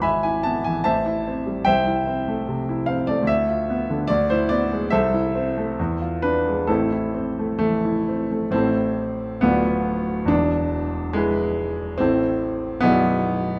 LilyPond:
<<
  \new Staff \with { instrumentName = "Grand piano" } { \time 2/4 \key a \dorian \tempo 4 = 72 <e'' gis'' b''>16 gis''16 a''16 gis''16 <c'' e'' a''>4 | \key a \minor <c'' e'' g''>4. f''16 d''16 | e''4 d''16 c''16 d''8 | <a' c'' e''>4. b'8 |
<c' e' a'>4 a4 | c'4 b4 | d'4 gis4 | c'4 b4 | }
  \new Staff \with { instrumentName = "Grand piano" } { \time 2/4 \key a \dorian gis,,16 e'16 b16 e16 a,,16 e'16 c'16 g16 | \key a \minor c,16 e'16 c'16 a16 c16 e'16 c'16 a16 | d,16 f'16 b16 d16 d,16 e'16 b16 gis16 | c,16 e'16 c'16 a16 e,16 f'16 d'16 gis16 |
<a,, a,>16 e'16 c'16 a16 e16 e'16 c'16 a16 | <a,, a, e' a' c''>4 <d,, d, f' b' d''>4 | <e,, e,>4 <e' gis' b'>4 | <a,, a, e' a' c''>4 <b,,, b,, e' gis' d''>4 | }
>>